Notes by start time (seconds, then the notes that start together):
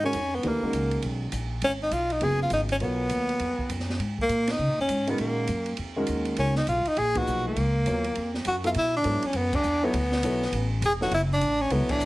Already playing: G#2
0.03 D#3 G#3 C#4 F#4 A#4
0.13 F2, hi-hat pedal, ride
0.35 B3
0.43 D#2 E3 A3 D4 G4 B4, ride
0.47 A#3
0.62 D#3 G#3 C#4 F#4 A#4, muted upright bass stroke
0.73 C#2, hi-hat pedal, ride
0.91 ride
1.02 B1, ride
1.32 A#1, hi-hat pedal, ride
1.62 G#1 C#4, ride
1.83 D#4
1.91 B1 F4, hi-hat pedal, ride
2.10 D#4, ride
2.21 F#1 C#3 F#3 B3 F4 G#4, ride
2.42 F4
2.50 G#1 D#4, hi-hat pedal, ride
2.69 C#4, ride
2.80 B1 F#3 B3 F4 A#4 C#5, ride
3.09 D#2, hi-hat pedal, ride
3.29 ride
3.39 F2, ride
3.58 muted upright bass stroke, kick
3.68 F#2, hi-hat pedal, ride
3.80 snare
3.90 snare
3.99 G#2, ride
4.18 A#3, kick
4.29 A#2, hi-hat pedal, ride
4.47 D#4, snare, ride
4.58 C#3
4.68 A#2
4.78 F#2 C#4
4.88 G#2, hi-hat pedal, ride
5.07 D#3 G#3 B3 C#4 F#4 A#4, ride
5.18 A#2 A#3, ride
5.47 F#2, hi-hat pedal, ride
5.66 ride
5.77 F2, ride
5.96 D#3 G#3 C#4 F#4 A#4
6.07 D#2, hi-hat pedal, ride
6.25 ride
6.36 C#2 D#3 G#3 C#4 F#4 A#4, ride
6.55 D#4, snare
6.67 B1 F4, hi-hat pedal, ride
6.85 D#4, muted upright bass stroke, ride
6.96 A#1 G#4, ride
7.15 A#2 F3 D#4 F#4 G#4 B4, kick, ride
7.27 B1, hi-hat pedal
7.47 A#3
7.56 C#2, ride
7.86 D#2 F#3 B3 F4 A#4 C#5, hi-hat pedal, ride
8.04 ride
8.15 F2, ride
8.34 snare
8.45 F#2 F#4, hi-hat pedal, ride
8.63 F#3 B3 E4 F4 A4 E5, ride
8.74 B2 E4, ride
8.97 D4
9.03 G#2 F#3 B3 E4 A4 C#5, hi-hat pedal, ride
9.22 C#4, muted upright bass stroke, ride
9.33 F#2 B3, ride
9.53 D4, kick, crash
9.63 E2, hi-hat pedal
9.83 F#3 B3 E4 A4 C#5
9.93 D2, ride
10.12 snare
10.23 B1 F#3 B3 E4 A4 C#5, hi-hat pedal, ride
10.42 snare
10.52 A1, ride
10.81 E1, hi-hat pedal, ride
10.86 G#4
11.00 F#3 B3 E4 F#4 A4 C#5, snare
11.11 F#1 E4, ride
11.33 D4
11.40 A1, hi-hat pedal, ride
11.61 C#4
11.70 C#2 F#3 B3 E4 A4 C#5, ride
11.80 B1
11.89 A1 D4, kick, crash
11.99 E2, hi-hat pedal